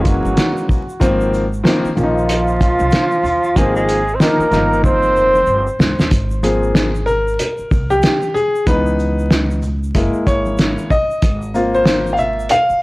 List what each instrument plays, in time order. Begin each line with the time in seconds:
Already playing: upright bass F#1, grand piano E3 G#3 A#3 C#4
0.01 tenor saxophone F3, flugelhorn F4
0.05 kick, closed hi-hat, shaker
0.07 tenor saxophone F#3, flugelhorn F#4, shaker
0.25 upright bass G#1, high conga, shaker
0.37 snare, closed hi-hat, shaker
0.57 shaker
0.69 kick, low conga, shaker
0.89 shaker
1.00 upright bass G#1, grand piano D#3 F3 A#3 C4, kick, closed hi-hat, shaker
1.21 shaker
1.34 shaker
1.53 shaker
1.64 grand piano D#3 F3 A#3 C4, snare, closed hi-hat, shaker
1.85 muted upright bass stroke, shaker
1.95 upright bass A#1, grand piano D#3 F3 A#3 C#4, tenor saxophone F3, flugelhorn F4, low conga, shaker
2.03 grand piano D#4
2.18 shaker
2.29 closed hi-hat, shaker
2.48 shaker
2.61 kick, closed hi-hat, shaker
2.79 upright bass C2, high conga, shaker
2.91 snare, closed hi-hat, shaker
3.11 shaker
3.23 upright bass D#2, low conga, shaker
3.44 shaker
3.56 upright bass G#1, grand piano D#3 F3 A#3 C4, tenor saxophone G#3, flugelhorn G#4, kick, closed hi-hat, shaker
3.76 tenor saxophone G#3, flugelhorn G#4, shaker
3.89 closed hi-hat, shaker
4.08 shaker
4.14 tenor saxophone C4, flugelhorn C5
4.20 grand piano D#3 F3 A#3 D#4, tenor saxophone A#3, flugelhorn A#4, snare, closed hi-hat, shaker
4.39 muted upright bass stroke, shaker
4.51 upright bass G1, grand piano D#3 F3 A#3 D#4, snare, low conga, shaker
4.73 shaker
4.84 tenor saxophone C4, flugelhorn C5, kick, low conga, shaker
5.03 shaker
5.15 upright bass F1, shaker
5.35 high conga, shaker
5.46 upright bass G1, shaker
5.67 shaker
5.79 upright bass C#2, snare, low conga, shaker
5.99 upright bass D#2, snare, shaker
6.11 upright bass G#1, kick, closed hi-hat, shaker
6.31 shaker
6.43 grand piano F3 A#3 C4 G#4, closed hi-hat, high conga, shaker
6.63 shaker
6.75 snare, closed hi-hat, high conga, shaker
6.95 shaker
7.06 grand piano A#4, low conga, shaker
7.28 shaker
7.39 closed hi-hat, low conga, shaker
7.58 muted upright bass stroke, shaker
7.71 upright bass C2, kick, shaker
7.90 grand piano G4, high conga, shaker
8.02 snare, closed hi-hat, shaker
8.22 shaker
8.34 grand piano G#4, low conga, shaker
8.55 shaker
8.67 upright bass C#2, grand piano E3 B3 D#4 B4, kick, closed hi-hat, shaker
8.87 shaker
8.99 high conga, shaker
9.19 shaker
9.30 snare, closed hi-hat, high conga, shaker
9.51 shaker
9.62 low conga, shaker
9.84 shaker
9.95 upright bass F#1, grand piano G#3 A#3 E4, kick, closed hi-hat, low conga, shaker
10.13 muted upright bass stroke, shaker
10.27 upright bass G#1, grand piano C#5, kick, closed hi-hat, shaker
10.46 high conga, shaker
10.57 snare, closed hi-hat, shaker
10.78 shaker
10.90 grand piano D#5, kick, low conga, shaker
11.11 shaker
11.22 upright bass G#1, kick, closed hi-hat, shaker
11.42 shaker
11.54 grand piano A#3 C4 F4, high conga, shaker
11.74 grand piano C5, shaker
11.86 snare, closed hi-hat, high conga, shaker
12.07 shaker
12.13 grand piano F5
12.17 grand piano E5, low conga, shaker
12.19 shaker
12.40 shaker
12.49 grand piano F5, closed hi-hat, low conga, shaker
12.70 muted upright bass stroke, shaker